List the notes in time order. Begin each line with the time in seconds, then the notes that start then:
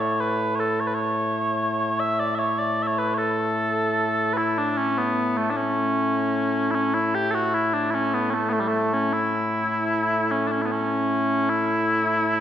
Already playing: A2 A3
0.00 C#5
0.20 B4
0.55 C#5
0.60 A4
0.80 C#5
0.87 B4
0.94 C#5
2.00 E5
2.20 D5
2.35 C#5 E5
2.58 D5
2.83 E5
2.87 C#5
2.98 B4
3.14 C#5
3.18 A4
4.33 E4 B4
4.58 D4
4.77 C#4
4.98 B3
5.37 A3
5.50 D4
5.57 C#4
6.71 C#4 E4
6.94 E4
7.15 G4
7.31 F#4 A4
7.54 E4
7.74 D4
7.91 C#4 E4
8.14 B3
8.30 C#4
8.34 A3
8.50 A3 B3
8.60 G3
8.68 A3
8.93 C#4
9.13 E4
10.31 C#4
10.47 D4
10.52 C#4
10.62 B3 E4
10.71 C#4
11.49 E4